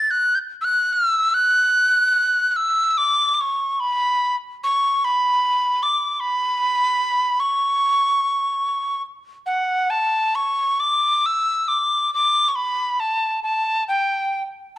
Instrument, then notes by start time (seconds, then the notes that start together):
tin whistle
Already playing: A6
0.11 F#6
0.35 G6
0.61 E6 F#6
0.93 E6
1.34 F#6
2.51 F#6
2.56 E6
2.91 E6
2.98 D6
3.34 D6
3.41 C#6
3.80 B5
4.64 C#6
5.04 B5
5.83 D6
6.20 B5
7.40 C#6
9.46 F#5
9.90 A5
10.35 C#6
10.80 D6
11.26 E6
11.68 D6
12.14 D6
12.48 C#6
12.56 B5
13.00 A5
13.43 A5
13.88 G5